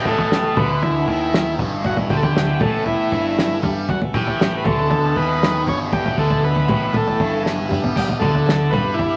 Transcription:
Already playing: A2 B2 E3 A3 B3 C#4 A4 E5
0.05 A1 A2 A4, kick, mid tom, low conga
0.18 floor tom
0.31 snare, low conga
0.43 A3, high conga
0.56 D2 D3 B4, kick, floor tom, mid tom, low conga
0.69 high conga
0.81 E4, floor tom, high conga
1.04 D#2 D#3 A3, kick
1.34 snare
1.58 G1 G2, kick, floor tom, low conga
1.66 A2
1.84 F#4, kick, floor tom
1.96 floor tom, high conga
2.09 D2 D3 G4, kick, mid tom, low conga
2.17 A4
2.23 G4, floor tom
2.29 E3
2.35 snare, low conga
2.47 high conga
2.60 A1 A2 A4, kick, floor tom, mid tom, low conga
2.74 high conga
2.86 A3 E4, floor tom, high conga
3.12 G1 G2, kick
3.38 snare
3.50 A3
3.62 G2 G3, kick, floor tom, low conga
3.89 F#4, kick, floor tom
4.02 floor tom, high conga
4.13 A1 A2 G4, kick, mid tom, low conga
4.27 floor tom
4.40 snare, low conga
4.53 high conga
4.57 B4
4.64 D2 D3 A4, kick, floor tom, mid tom, low conga
4.74 B2, high conga
4.90 A4, floor tom, high conga
5.16 D#2 D#3 B4, kick
5.37 A3
5.43 snare
5.66 G1 G2 C#5, kick, floor tom, low conga
5.93 G4, kick, floor tom
5.98 A3
6.05 floor tom, high conga
6.18 D2 D3 A4, kick
6.30 floor tom
6.42 B4, low conga
6.55 floor tom, high conga
6.59 A2
6.68 A1 A2, kick, floor tom, mid tom, low conga
6.81 high conga
6.93 A4, floor tom, mid tom, high conga
7.07 floor tom
7.20 G1 G2 E3, kick, floor tom
7.46 snare
7.57 high conga
7.69 G2 G3, mid tom, low conga
7.83 B3, floor tom
7.95 D3 D4 G4 D5 A5, kick, floor tom, splash
8.09 floor tom, high conga
8.20 D2 D3 A4, kick, mid tom, low conga
8.35 floor tom
8.46 snare, low conga
8.58 high conga
8.71 G2 G3 B4, kick, floor tom, mid tom, low conga
8.84 high conga
8.94 E4, high conga
8.99 floor tom

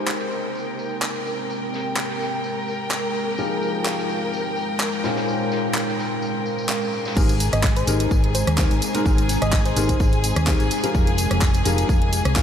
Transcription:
Already playing: G#3 C4 D#4 G4 G#4 A#4 C5 D#5 G5
0.05 G#3, clap, tambourine
0.20 closed hi-hat
0.32 tambourine
0.55 tambourine
0.79 tambourine
1.02 clap, tambourine
1.15 closed hi-hat
1.26 tambourine
1.50 tambourine
1.74 snare, tambourine
1.96 clap, tambourine
2.10 snare
2.20 snare, tambourine
2.44 tambourine
2.68 tambourine
2.91 clap, tambourine
3.15 tambourine
3.38 F3 D#4 F4 G4 G#4 A#4, tambourine
3.62 F5, tambourine
3.85 clap, tambourine
3.99 closed hi-hat
4.09 tambourine
4.34 tambourine
4.56 tambourine
4.80 clap, tambourine
4.92 closed hi-hat
5.03 A#2 C#4 D#4 G#4 A#4 C5, snare, tambourine
5.16 snare, tambourine
5.25 C5, tambourine
5.34 A#5
5.49 D#5, snare, tambourine
5.74 clap, tambourine
5.88 snare
5.99 snare, tambourine
6.22 tambourine
6.46 tambourine
6.58 tambourine
6.69 clap
6.82 tambourine
6.93 tambourine
7.05 snare, tambourine
7.17 G#1 G#2 C4 D#4 G4 G#4 A#4 G#5, kick, crash, tambourine
7.29 closed hi-hat, tambourine
7.40 open hi-hat, tambourine
7.53 G#1 D#5, cross-stick, closed hi-hat, tambourine
7.63 kick, snare, clap, tambourine
7.76 C5, closed hi-hat, tambourine
7.87 G#1 G#2 C4 D#4 G4 G#4 A#4, open hi-hat, tambourine
8.00 closed hi-hat, tambourine
8.11 G#1, kick, tambourine
8.24 closed hi-hat
8.35 C5, open hi-hat, tambourine
8.47 D#2, cross-stick, closed hi-hat, tambourine
8.58 G#2 C4 D#4 G4 G#4 A#4, kick, snare, clap, tambourine
8.71 G#1, closed hi-hat, tambourine
8.82 open hi-hat, tambourine
8.95 G#2 C4 D#4 G4 G#4 A#4, closed hi-hat, tambourine
9.06 G#1 G#2 C4 D#4 G4 G#4 A#4, kick, tambourine
9.18 closed hi-hat, tambourine
9.29 snare, open hi-hat, tambourine
9.42 G#1 D#5, cross-stick, closed hi-hat, tambourine
9.52 kick, snare, clap, tambourine
9.65 C5, snare, closed hi-hat, tambourine
9.76 G#1 G#2 C4 D#4 G4 G#4 A#4, snare, open hi-hat, tambourine
9.89 kick, closed hi-hat, tambourine
10.00 G#1, kick, tambourine
10.13 closed hi-hat, tambourine
10.24 open hi-hat, tambourine
10.36 D#2, cross-stick, closed hi-hat, tambourine
10.47 G#2 C4 D#4 G4 G#4 A#4, kick, snare, clap, tambourine
10.60 G#1, closed hi-hat, tambourine
10.71 open hi-hat, tambourine
10.84 F3 C4 D#4 G4 G#4 A#4, closed hi-hat, tambourine
10.95 F1 F3 D#4 F4 G4 G#4 A#4, kick, tambourine
11.07 closed hi-hat, tambourine
11.18 open hi-hat, tambourine
11.31 F1, cross-stick, closed hi-hat, tambourine
11.41 kick, snare, clap, tambourine
11.54 closed hi-hat, tambourine
11.65 F1 F3 D#4 F4 G4 G#4 A#4, open hi-hat, tambourine
11.78 closed hi-hat, tambourine
11.89 F1, kick, tambourine
12.02 closed hi-hat
12.13 open hi-hat, tambourine
12.25 C2, cross-stick, closed hi-hat, tambourine
12.36 A#3 D#4 F4 G4 G#4 A#4, kick, snare, clap, tambourine

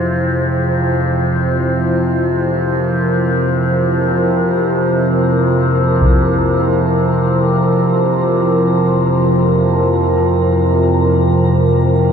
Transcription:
Already playing: F2 C3 F3 E4 F4 G#4 C5
2.53 A#4
6.01 taiko

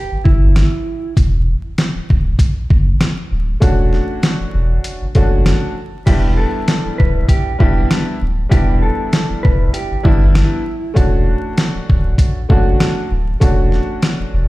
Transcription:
Already playing: G4
0.11 G1
0.24 G1 E4, kick
0.56 snare, closed hi-hat
1.17 E1, kick, closed hi-hat
1.78 snare, closed hi-hat
1.95 D1
2.10 D1, kick
2.39 kick, closed hi-hat
2.70 F#1, kick
3.01 snare, closed hi-hat
3.31 D1
3.60 E1 A3 C#4 D4 F#4, kick, closed hi-hat
3.93 snare
4.23 snare, closed hi-hat
4.40 E1
4.54 E1
4.84 closed hi-hat
5.01 F#1
5.15 F#1 A3 C#4 D4 F#4, kick, closed hi-hat
5.46 snare, closed hi-hat
6.06 E1 G3 B3 D4 E4 G4, kick, closed hi-hat, crash
6.37 A4
6.68 snare, closed hi-hat
6.85 D1
6.98 D1 B4, kick
7.28 G4, kick, closed hi-hat
7.58 E1 G3 B3 D4 E4 G4, kick
7.91 snare, closed hi-hat
8.21 D1
8.49 E1 G3 B3 D4 E4 G4, kick, closed hi-hat
8.82 A4
9.13 snare, closed hi-hat
9.29 E1
9.43 E1 B4, kick
9.73 G4, closed hi-hat
9.91 G1
10.03 G1 G3 B3 D4 E4, kick
10.35 snare, closed hi-hat
10.94 E1 A3 C#4 D4 F#4, kick, closed hi-hat
11.58 snare, closed hi-hat
11.74 D1
11.90 D1, kick
12.18 kick, closed hi-hat
12.49 F#1 A3 C#4 D4 F#4, kick
12.80 snare, closed hi-hat
13.11 D1
13.40 E1 A3 C#4 D4 F#4, kick, closed hi-hat
13.72 snare
14.02 snare, closed hi-hat
14.19 E1
14.33 E1

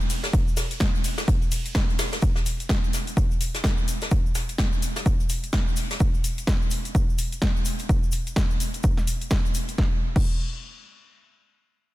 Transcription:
0.01 shaker
0.10 closed hi-hat, open hi-hat, ride, shaker
0.23 snare, closed hi-hat, shaker
0.33 kick, closed hi-hat, ride, shaker
0.48 shaker
0.57 snare, closed hi-hat, open hi-hat, ride, shaker
0.71 closed hi-hat, shaker
0.80 kick, snare, closed hi-hat, shaker
0.95 closed hi-hat, shaker
1.04 closed hi-hat, open hi-hat, ride, shaker
1.18 snare, closed hi-hat, shaker
1.28 kick, closed hi-hat, shaker
1.41 closed hi-hat, shaker
1.51 closed hi-hat, open hi-hat, ride, shaker
1.66 closed hi-hat, shaker
1.75 kick, snare, closed hi-hat, shaker
1.90 closed hi-hat, shaker
1.99 snare, closed hi-hat, open hi-hat, ride, shaker
2.12 snare, closed hi-hat, shaker
2.22 kick, closed hi-hat, shaker
2.35 snare, shaker
2.46 closed hi-hat, open hi-hat, shaker
2.60 closed hi-hat, shaker
2.69 kick, snare, closed hi-hat, shaker
2.84 shaker
2.93 snare, closed hi-hat, open hi-hat, shaker
3.07 closed hi-hat, shaker
3.17 kick, closed hi-hat, shaker
3.31 closed hi-hat, shaker
3.41 closed hi-hat, open hi-hat, shaker
3.54 snare, closed hi-hat, shaker
3.64 kick, snare, closed hi-hat, shaker
3.78 shaker
3.88 closed hi-hat, open hi-hat, shaker
4.01 snare, closed hi-hat, shaker
4.11 kick, closed hi-hat, shaker
4.26 shaker
4.35 snare, closed hi-hat, open hi-hat, shaker
4.49 closed hi-hat, shaker
4.58 kick, snare, closed hi-hat, shaker
4.72 closed hi-hat, shaker
4.82 closed hi-hat, open hi-hat, shaker
4.96 snare, closed hi-hat, shaker
5.06 kick, closed hi-hat, shaker
5.20 closed hi-hat, shaker
5.29 closed hi-hat, open hi-hat, shaker
5.43 closed hi-hat, shaker
5.53 kick, snare, closed hi-hat, shaker
5.67 closed hi-hat, shaker
5.76 open hi-hat, shaker
5.91 snare, closed hi-hat, shaker
6.00 kick, closed hi-hat, shaker
6.14 shaker
6.24 open hi-hat, shaker
6.38 closed hi-hat, shaker
6.47 kick, snare, closed hi-hat, shaker
6.62 shaker
6.71 open hi-hat, shaker
6.85 closed hi-hat, shaker
6.95 kick, closed hi-hat, shaker
7.10 shaker
7.18 open hi-hat, shaker
7.32 closed hi-hat, shaker
7.42 kick, snare, closed hi-hat, shaker
7.56 shaker
7.65 open hi-hat, shaker
7.79 closed hi-hat, shaker
7.89 kick, closed hi-hat, shaker
8.03 shaker
8.12 open hi-hat, shaker
8.27 closed hi-hat, shaker
8.36 kick, snare, closed hi-hat, shaker
8.50 shaker
8.60 open hi-hat, shaker
8.74 closed hi-hat, shaker
8.83 kick, closed hi-hat, shaker
8.97 snare, shaker
9.07 open hi-hat, shaker
9.21 closed hi-hat, shaker
9.31 kick, snare, closed hi-hat, shaker
9.45 shaker
9.55 open hi-hat, shaker
9.68 closed hi-hat, shaker
9.78 kick, snare
10.16 kick, crash

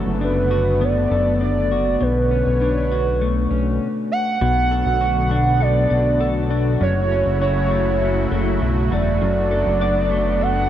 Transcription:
Already playing: F#2 D3 F#3 A3 B3 F#4 A4
0.06 F#1
0.21 D4 B4
0.51 F#4
0.81 B3 D5
1.11 F#1 A4
1.41 D4 D5
1.72 F#4
2.01 B1 B2 D3 B4 C#5
2.31 C#4
2.46 B1
2.61 D4
2.92 F#4
3.21 A3
3.51 B1 C#4
4.11 F#5
4.41 B1 B2 D3 F#3 A3 B3 F#4
4.71 A4
4.86 B1
5.01 F#4
5.31 D4
5.60 A4 D5
5.90 B1 D4
6.20 A4
6.50 D4
6.80 F#1 F#2 C#3 E4 C#5
7.11 C#4
7.26 F#1
7.42 F#4 C#5
7.71 A3
8.02 C#4
8.31 F#1 A3
8.62 B1
8.92 E1 A3 D5
9.21 F#1 F#2 B3 D4
9.51 A4
9.67 F#1
9.81 D5
10.11 A3
10.41 A4 F#5

